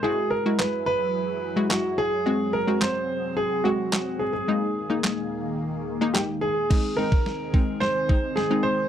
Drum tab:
CC |----------------|----------------|----------------|x---------------|
CP |----x-------x---|----x-------x---|----x-------x---|----------------|
SD |----o-------o---|----o-------o---|----o-------o---|o---o---o---o---|
BD |----------------|----------------|----------------|o--o--o---o-----|